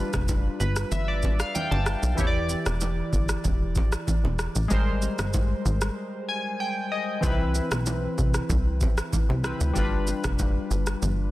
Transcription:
0.00 2.13 G3 medium
0.00 2.14 D4 medium
0.00 2.14 F4 medium
0.00 0.59 B4 medium
0.00 downlifter medium
0.13 0.50 F1 medium
0.13 kick medium
0.13 cross-stick loud
0.13 low bongo medium
0.13 shaker medium
0.28 kick medium
0.28 high bongo medium
0.28 shaker medium
0.60 0.85 G1 loud
0.60 0.89 B4 medium
0.60 shaker soft
0.76 cross-stick medium
0.76 shaker medium
0.92 1.29 G1 loud
0.92 1.07 E5 medium
0.92 low conga medium
0.92 shaker medium
1.08 1.37 D5 medium
1.23 kick medium
1.23 low bongo medium
1.23 shaker soft
1.40 1.54 F5 medium
1.40 cross-stick loud
1.40 shaker medium
1.55 1.70 G5 medium
1.55 high bongo medium
1.55 low conga medium
1.55 shaker medium
1.71 1.96 G1 medium
1.71 2.15 A5 medium
1.71 low bongo medium
1.86 cross-stick medium
1.86 shaker medium
2.03 2.15 B1 medium
2.03 shaker medium
2.15 2.55 E1 loud
2.15 4.65 E3 medium
2.15 4.66 E4 medium
2.15 4.67 G4 medium
2.15 kick loud
2.15 low conga medium
2.15 shaker medium
2.20 2.26 C#5 medium
2.27 4.71 D5 medium
2.49 low bongo soft
2.49 shaker medium
2.66 3.02 E1 medium
2.66 cross-stick loud
2.66 low bongo medium
2.66 shaker medium
2.81 high bongo medium
2.81 shaker medium
3.13 3.37 G1 medium
3.13 kick medium
3.13 shaker soft
3.29 cross-stick medium
3.29 shaker medium
3.44 3.82 E1 loud
3.44 kick loud
3.44 low conga medium
3.44 shaker medium
3.75 kick loud
3.75 low bongo medium
3.75 shaker soft
3.92 cross-stick loud
3.92 shaker medium
4.07 kick medium
4.07 high bongo medium
4.07 low conga medium
4.07 shaker medium
4.24 4.48 E1 medium
4.24 low bongo medium
4.39 cross-stick medium
4.39 shaker medium
4.55 4.67 A1 medium
4.55 shaker medium
4.68 5.08 G#1 loud
4.68 7.19 G3 medium
4.68 7.18 G#3 medium
4.68 7.20 A#4 medium
4.68 kick loud
4.68 low conga medium
4.68 shaker medium
4.73 7.21 C5 medium
5.02 low bongo soft
5.02 shaker medium
5.19 5.55 G1 medium
5.19 cross-stick loud
5.19 low bongo medium
5.19 shaker medium
5.33 kick medium
5.33 high bongo medium
5.33 shaker medium
5.65 5.90 G#1 medium
5.65 shaker soft
5.81 cross-stick medium
5.81 shaker medium
6.29 6.58 G#5 medium
6.60 6.89 G5 medium
6.92 7.21 D#5 medium
7.21 7.61 C2 loud
7.21 9.39 E3 medium
7.21 9.40 C4 medium
7.21 7.30 D#4 medium
7.21 kick loud
7.21 low conga medium
7.21 shaker medium
7.26 9.42 B4 medium
7.31 9.44 E4 medium
7.55 low bongo medium
7.55 shaker medium
7.71 8.08 B1 medium
7.71 cross-stick loud
7.71 low bongo medium
7.71 shaker medium
7.86 high bongo medium
7.86 shaker medium
8.18 8.43 C2 medium
8.18 kick medium
8.18 shaker soft
8.34 cross-stick medium
8.34 shaker medium
8.49 8.87 C2 loud
8.49 kick loud
8.49 low conga medium
8.49 shaker medium
8.81 kick loud
8.81 low bongo medium
8.81 shaker soft
8.98 cross-stick loud
8.98 shaker medium
9.13 kick medium
9.13 high bongo medium
9.13 low conga medium
9.13 shaker medium
9.29 9.54 C2 loud
9.29 low bongo medium
9.43 9.75 C3 medium
9.43 9.76 C4 medium
9.43 9.76 E4 medium
9.43 9.77 B4 medium
9.43 cross-stick loud
9.43 shaker medium
9.61 9.73 D2 medium
9.61 shaker medium
9.73 10.13 G1 loud
9.73 11.31 G3 medium
9.73 11.31 D4 medium
9.73 11.31 F4 medium
9.73 kick loud
9.73 low conga medium
9.73 shaker medium
9.78 11.31 B4 medium
10.07 low bongo soft
10.07 shaker medium
10.24 10.60 F1 medium
10.24 kick medium
10.24 cross-stick loud
10.24 low bongo medium
10.24 shaker medium
10.39 kick medium
10.39 high bongo medium
10.39 shaker medium
10.71 10.95 G1 medium
10.71 shaker soft
10.87 cross-stick medium
10.87 shaker medium
11.02 11.31 G1 loud
11.02 low conga medium
11.02 shaker medium

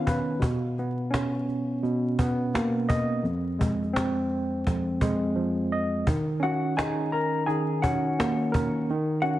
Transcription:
0.00 0.42 D#3 medium
0.00 0.43 B3 medium
0.00 0.43 C#4 medium
0.00 0.41 D#4 medium
0.07 0.42 B4 loud
0.07 cajon bass loud
0.39 1.82 B2 medium
0.39 cajon bass loud
0.78 2.18 B3 medium
0.78 cajon slap soft
1.11 3.23 C#4 medium
1.11 cajon slap loud
1.49 cajon slap soft
1.83 3.24 B2 medium
1.83 cajon slap medium
2.19 3.25 B3 loud
2.19 cajon bass loud
2.54 3.25 A#3 medium
2.54 cajon slap loud
2.89 3.24 D#5 loud
2.89 cajon bass loud
3.23 4.65 F2 loud
3.23 cajon slap soft
3.59 5.01 G#3 medium
3.59 cajon bass medium
3.83 cajon slap soft
3.93 6.06 C4 loud
3.93 cajon slap loud
4.66 6.07 F2 medium
4.66 cajon bass medium
4.66 cajon slap medium
5.01 6.07 G#3 loud
5.01 cajon bass loud
5.36 6.07 F3 medium
5.72 6.07 D#5 medium
6.07 7.46 D#3 medium
6.07 cajon bass loud
6.40 7.82 C#4 medium
6.40 6.75 F#4 medium
6.40 6.74 F#5 medium
6.40 cajon slap soft
6.77 8.89 D#4 medium
6.77 7.09 G#4 medium
6.77 7.09 G#5 medium
6.77 cajon slap loud
7.12 7.45 A#4 medium
7.12 7.44 A#5 medium
7.12 cajon slap soft
7.46 8.89 D#3 medium
7.46 7.79 G#4 medium
7.46 7.79 G#5 medium
7.46 cajon slap medium
7.82 8.89 C#4 medium
7.82 8.85 F#4 medium
7.82 8.85 F#5 medium
7.82 cajon bass loud
8.19 8.89 A#3 medium
8.19 cajon slap loud
8.52 8.88 A#4 loud
8.52 cajon bass loud
8.90 9.39 D#3 loud
8.90 cajon slap soft
9.22 9.39 C#4 medium
9.22 9.39 F#4 medium
9.22 9.39 F#5 medium
9.22 cajon slap soft

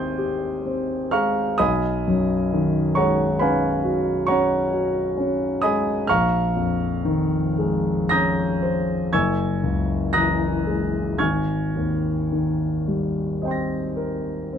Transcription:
0.00 1.55 G#1 medium
0.00 1.13 G#3 soft
0.00 0.66 C4 soft
0.00 0.18 G4 soft
0.00 1.08 G5 medium
0.00 1.60 G#5 medium
0.00 1.08 C6 medium
0.00 1.12 C#6 medium
0.00 1.08 D#6 medium
0.00 1.11 F6 medium
0.00 1.11 G6 medium
0.00 1.62 G#6 medium
0.18 0.93 G4 soft
0.66 1.41 C4 soft
1.11 1.60 G#3 soft
1.11 1.56 F5 medium
1.11 1.56 A#5 medium
1.11 1.56 C#6 medium
1.11 1.59 F6 medium
1.58 6.04 B1 medium
1.58 2.90 D#5 medium
1.58 2.90 G#5 medium
1.58 2.90 B5 medium
1.58 2.93 D#6 medium
2.08 2.78 F#2 soft
2.53 3.21 D#3 soft
2.95 3.65 G#3 soft
2.95 3.36 C#5 medium
2.95 3.36 F#5 medium
2.95 3.36 A#5 medium
2.95 3.38 C#6 medium
3.39 4.10 C#4 soft
3.39 4.24 B4 medium
3.39 4.24 F5 soft
3.39 4.24 G#5 medium
3.39 4.27 B5 medium
3.84 4.54 F#4 soft
4.27 4.99 C#4 soft
4.27 5.58 C#5 medium
4.27 5.58 F#5 medium
4.27 5.58 A#5 medium
4.27 5.61 C#6 medium
4.73 5.44 F#4 soft
5.17 5.90 C#4 soft
5.62 6.09 G#3 soft
5.62 6.05 D#5 medium
5.62 6.05 G#5 medium
5.62 6.05 B5 medium
5.62 6.08 D#6 medium
6.07 9.09 A#1 medium
6.07 8.07 F5 medium
6.07 8.07 A#5 medium
6.07 8.07 C#6 medium
6.07 8.10 F6 medium
6.56 7.35 F2 soft
7.05 7.89 D#3 soft
7.58 8.43 G#3 soft
8.09 8.93 C#4 soft
8.09 9.09 A#5 medium
8.09 9.08 D#6 medium
8.09 9.09 G6 medium
8.09 9.12 A#6 medium
8.62 9.12 C5 soft
9.13 11.15 F#1 soft
9.13 10.08 G#5 medium
9.13 10.08 C#6 medium
9.13 10.08 E6 medium
9.13 10.12 G#6 medium
9.64 10.43 C#2 soft
10.13 10.97 E3 soft
10.13 11.15 A#5 medium
10.13 11.15 D#6 medium
10.13 11.15 F#6 medium
10.13 11.19 A#6 medium
10.67 11.20 G#3 soft
11.18 14.58 G#1 soft
11.18 14.58 G#5 soft
11.18 14.58 C#6 medium
11.18 14.58 F6 medium
11.18 14.58 G#6 medium
11.76 12.64 D#2 soft
12.32 13.20 D#3 soft
12.87 13.76 G3 soft
13.42 14.30 C4 soft
13.42 14.58 D#5 soft
13.42 14.58 G5 soft
13.48 14.58 C6 soft
13.48 14.58 A#6 soft
13.97 14.58 A#4 soft
14.53 14.58 C4 soft

